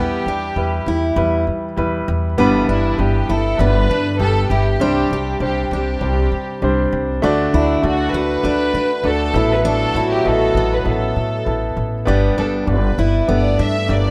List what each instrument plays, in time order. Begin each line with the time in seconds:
Already playing: upright bass E2, grand piano E3 G3 E4 B4, steel-string acoustic guitar B3, violin section G4
0.26 upright bass E2, steel-string acoustic guitar D4
0.56 upright bass E2, grand piano G3 E4 B4
0.86 upright bass E2, steel-string acoustic guitar E4
1.16 upright bass E2, grand piano G3 E4 B4
1.47 upright bass E3
1.77 upright bass E2, grand piano G3 E4 B4
2.08 upright bass E2
2.38 upright bass G1, grand piano G2 G3 B3 D4 B4, french horn section E3 E4, steel-string acoustic guitar B3
2.69 upright bass G1, steel-string acoustic guitar D4, violin section E4
2.97 upright bass G1, grand piano G3 B3 D4 B4, violin section G4
3.29 upright bass G1, steel-string acoustic guitar E4, violin section A4
3.58 upright bass G1, grand piano G3 B3 D4 D5, steel-string acoustic guitar B3, violin section B4
3.90 french horn section D3 D4, steel-string acoustic guitar D4
4.19 upright bass G1, grand piano G3 B3 D4 G4, violin section A4
4.50 upright bass G1, steel-string acoustic guitar E4, violin section G4
4.80 upright bass C2, french horn section C3 C4, grand piano C3 G3 C4 D4 C5, steel-string acoustic guitar D4
5.10 upright bass C2, steel-string acoustic guitar G4
5.40 upright bass C2, grand piano G3 C4 D4 C5, violin section G4
5.71 upright bass C2, steel-string acoustic guitar D4, violin section G4
6.01 upright bass C2, grand piano G3 C4 D4 C5
6.32 upright bass C3
6.62 upright bass C2, grand piano G3 C4 D4 C5
6.92 upright bass C2
7.22 upright bass D2, french horn section D3 D4, grand piano D3 A3 D4 F#4 D5, steel-string acoustic guitar D4
7.53 upright bass D2, violin section D4, steel-string acoustic guitar E4
7.82 upright bass D2, grand piano A3 D4 F#4 A4, violin section F#4
8.13 upright bass D2, steel-string acoustic guitar F#4, violin section B4
8.43 upright bass D2, grand piano A3 D4 F#4 D5, steel-string acoustic guitar D4
8.74 upright bass D3, steel-string acoustic guitar D4
9.04 upright bass D2, grand piano A3 D4 F#4 D5, violin section A4
9.34 upright bass A1, grand piano A2 B3 E4 A4 E5, french horn section F#3 F#4, steel-string acoustic guitar E4
9.52 violin section B4
9.65 steel-string acoustic guitar D4, violin section A4
9.95 upright bass A1, steel-string acoustic guitar E4
10.12 violin section G4
10.25 upright bass A1, grand piano B3 E4 A4 D#5, violin section A4
10.32 grand piano E5
10.55 upright bass A1, steel-string acoustic guitar B3
10.74 violin section B4
10.84 upright bass A1, grand piano B3 E4 A4 E5, violin section A4
11.16 upright bass A2
11.45 upright bass A1, grand piano B3 E4 A4 A5
11.77 upright bass A1
12.05 upright bass G1, grand piano G2 B3 D4 G4 D5, french horn section G3 G4, steel-string acoustic guitar B3
12.37 upright bass G1, steel-string acoustic guitar D4, violin section A4
12.66 upright bass G1, grand piano B3 D4 G4 D5, violin section B4
12.98 upright bass G1, steel-string acoustic guitar E4
13.27 upright bass G1, french horn section A3 A4, grand piano B3 D4 G4 A4, steel-string acoustic guitar B3, violin section D5
13.59 upright bass G2, steel-string acoustic guitar D4, violin section E5
13.87 upright bass G1, grand piano A#3 D4 G4 D5, violin section D5
13.94 grand piano B3